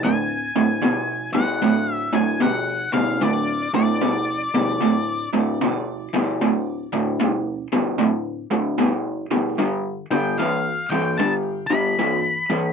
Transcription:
0.04 0.51 D2 medium
0.04 0.51 A2 medium
0.04 1.31 G#5 medium
0.56 0.81 D2 medium
0.56 0.81 A2 medium
0.83 1.29 D2 medium
0.83 1.30 B2 medium
1.33 1.60 D2 medium
1.33 1.60 B2 medium
1.33 1.93 F#5 loud
1.62 2.09 D2 medium
1.62 2.09 A2 medium
1.93 2.17 E5 loud
2.13 2.39 D2 medium
2.13 2.39 A2 medium
2.13 2.40 G#5 medium
2.40 2.88 D2 medium
2.40 2.88 B2 medium
2.40 2.90 F#5 medium
2.93 3.18 D2 medium
2.93 3.19 B2 medium
2.93 3.22 F5 medium
3.21 3.68 D2 medium
3.21 3.68 A2 medium
3.21 3.70 D5 medium
3.74 3.99 D2 medium
3.74 3.99 A2 medium
3.74 5.29 D5 medium
4.01 4.48 D2 medium
4.01 4.48 B2 medium
4.54 4.79 D2 medium
4.54 4.79 B2 medium
4.81 5.27 D2 medium
4.81 5.28 A2 medium
5.33 5.58 D2 medium
5.33 5.58 A2 medium
5.61 6.07 D2 medium
5.61 6.07 B2 medium
6.13 6.38 D2 medium
6.13 6.38 B2 medium
6.41 6.87 D2 medium
6.41 6.87 A2 medium
6.93 7.17 D2 medium
6.93 7.17 A2 medium
7.20 7.66 D2 medium
7.20 7.67 B2 medium
7.72 7.97 D2 medium
7.72 7.97 B2 medium
7.99 8.46 D2 medium
7.99 8.46 A2 medium
8.51 8.76 D2 medium
8.51 8.76 A2 medium
8.78 9.25 D2 medium
8.78 9.25 B2 medium
9.31 9.56 D2 medium
9.31 9.56 B2 medium
9.59 10.05 G2 medium
9.59 10.05 D3 medium
10.11 10.36 G2 medium
10.11 10.36 D3 medium
10.11 10.37 G5 medium
10.39 10.85 G2 medium
10.39 10.85 E3 medium
10.39 10.90 F5 medium
10.90 11.16 G2 medium
10.90 11.16 E3 medium
10.90 11.18 G5 medium
11.18 11.65 G2 medium
11.18 11.65 D3 medium
11.18 11.32 A5 loud
11.67 11.95 G2 medium
11.67 11.95 D3 medium
11.67 12.73 B5 loud
11.99 12.45 G2 medium
11.99 12.45 E3 medium
12.50 12.73 G2 medium
12.50 12.73 E3 medium

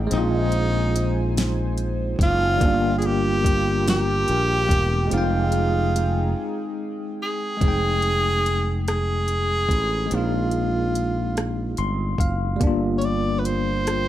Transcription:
0.00 2.57 D#4 medium
0.00 0.10 G5 medium
0.07 2.55 G#3 medium
0.07 2.57 C4 medium
0.11 2.16 A#1 loud
0.11 1.33 D#4 loud
0.11 2.58 D#4 medium
0.11 2.58 C5 medium
0.11 2.58 G#5 medium
0.11 closed hi-hat medium
0.18 2.60 F4 medium
0.52 closed hi-hat medium
0.96 closed hi-hat medium
1.37 snare loud
1.37 closed hi-hat medium
1.78 closed hi-hat medium
2.19 2.57 F#1 medium
2.19 2.93 F4 loud
2.19 kick medium
2.19 closed hi-hat medium
2.57 5.05 G3 medium
2.57 5.07 A#3 medium
2.57 5.09 F4 medium
2.57 kick loud
2.57 closed hi-hat medium
2.62 4.24 G1 loud
2.62 5.09 D4 medium
2.62 5.09 A#4 medium
2.62 7.57 G5 medium
2.68 5.11 F4 medium
2.98 3.08 G#4 medium
2.98 closed hi-hat medium
3.06 3.88 G4 loud
3.44 kick medium
3.44 closed hi-hat medium
3.88 5.09 G4 loud
3.88 snare loud
3.88 closed hi-hat medium
4.28 4.66 A#1 medium
4.28 closed hi-hat medium
4.69 5.07 E1 medium
4.69 kick medium
4.69 closed hi-hat medium
5.07 7.55 G#3 medium
5.07 7.57 C4 medium
5.07 7.58 G#4 medium
5.11 6.33 F1 loud
5.11 7.59 D#4 medium
5.11 7.58 D#4 medium
5.11 6.75 F4 medium
5.11 closed hi-hat medium
5.18 7.60 G5 medium
5.52 closed hi-hat medium
5.96 closed hi-hat medium
7.23 8.84 G#4 loud
7.57 10.05 G#3 medium
7.57 10.07 C4 soft
7.61 9.66 F1 medium
7.61 10.09 D#4 soft
7.61 kick loud
7.61 closed hi-hat medium
7.68 10.10 G5 medium
8.02 closed hi-hat soft
8.46 closed hi-hat medium
8.88 10.16 G#4 loud
8.88 cross-stick medium
8.88 closed hi-hat medium
9.28 closed hi-hat soft
9.69 10.07 A1 medium
9.69 kick medium
9.69 closed hi-hat medium
10.06 12.55 G#3 medium
10.06 12.57 C4 medium
10.11 11.74 A#1 medium
10.11 12.58 D#4 medium
10.11 11.80 F4 medium
10.11 closed hi-hat medium
10.17 12.60 F4 medium
10.51 closed hi-hat soft
10.95 closed hi-hat medium
11.37 cross-stick medium
11.37 closed hi-hat medium
11.77 12.16 G1 medium
11.77 12.17 C6 medium
11.77 closed hi-hat soft
12.18 12.57 F#1 medium
12.18 12.58 F5 medium
12.18 kick medium
12.18 closed hi-hat medium
12.56 14.08 G3 medium
12.56 14.08 A#3 medium
12.60 14.08 G1 medium
12.60 14.08 D4 medium
12.60 14.08 F4 medium
12.60 14.08 A#4 medium
12.60 14.08 G5 medium
12.60 kick loud
12.60 closed hi-hat medium
12.67 14.08 F4 medium
12.98 13.06 C#5 medium
12.98 closed hi-hat soft
13.05 13.41 D5 medium
13.39 13.48 B4 medium
13.45 14.08 C5 loud
13.45 closed hi-hat medium
13.87 cross-stick medium
13.87 closed hi-hat medium

